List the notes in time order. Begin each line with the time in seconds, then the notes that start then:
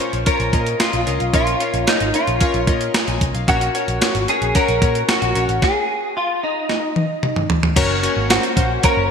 Already playing: A#2 C#5
0.00 C#4 F4 A#4 C5, closed hi-hat
0.13 A#1, closed hi-hat
0.26 C#4 F4 A#4 C#5, kick, closed hi-hat
0.40 A#1, closed hi-hat
0.53 A#2 C#4 F4 A#4 D#5, kick, closed hi-hat
0.66 closed hi-hat
0.79 C#4 F4 A#4 D#5, snare, closed hi-hat
0.93 A#1, closed hi-hat
1.06 C2 C#4 F4 A#4 D#5, closed hi-hat
1.20 B1, closed hi-hat
1.33 A#1 A#2 C#4 F4 A#4 C#5, kick, closed hi-hat
1.47 closed hi-hat
1.60 C#4 F4 A#4 C#5, closed hi-hat
1.74 A#1, closed hi-hat
1.87 C#4 D#4 F4 A#4 C#5, snare, closed hi-hat
2.00 G#1, closed hi-hat
2.14 C#4 F4 A#4 C#5, closed hi-hat
2.27 A#1, closed hi-hat
2.40 C#4 F4 A#4 C#5, kick, closed hi-hat
2.54 A#1, closed hi-hat
2.67 A#2 C#4 F4 A#4 D#5, kick, closed hi-hat
2.81 closed hi-hat
2.94 A#5, snare, closed hi-hat
3.08 A#1 G#5, closed hi-hat
3.21 C2, kick, closed hi-hat
3.35 B1 F5, closed hi-hat
3.48 A#1 A#2 C#4 F#4 A#4 C#5, kick, closed hi-hat
3.61 closed hi-hat
3.74 C#4 F#4 A#4 C#5, closed hi-hat
3.88 A#1, closed hi-hat
4.01 C#4 F#4 A#4 C#5, snare, closed hi-hat
4.15 G#1, closed hi-hat
4.28 C#4 F#4 G#4 A#4 C#5, closed hi-hat
4.42 A#1, closed hi-hat
4.55 C#4 F#4 A#4 C#5, kick, closed hi-hat
4.68 A#1, closed hi-hat
4.82 A#2 C#4 F#4 A#4 C#5, kick, closed hi-hat
4.95 closed hi-hat
5.08 C#4 F#4 A#4 C#5, snare, closed hi-hat
5.22 A#1, closed hi-hat
5.35 A#1 C#4 F#4 A#4 C#5, closed hi-hat
5.49 A1, closed hi-hat
5.62 G#4, kick, snare
6.17 F4
6.43 D#4
6.69 snare
6.96 high tom
7.23 mid tom
7.36 mid tom
7.50 floor tom
7.63 floor tom
7.76 F#1 A#3 C#4 F#4 A#4 C#5, kick, closed hi-hat, crash
8.03 C#4 F#4 A#4 C#5, closed hi-hat
8.17 G#1
8.29 C#4 F#4 A#4 C5, snare, closed hi-hat
8.43 closed hi-hat
8.56 A#1 C#4 F#4 A#4 C5, kick, closed hi-hat
8.83 C#4 F#4 A#4 C#5, kick, closed hi-hat
8.97 F#1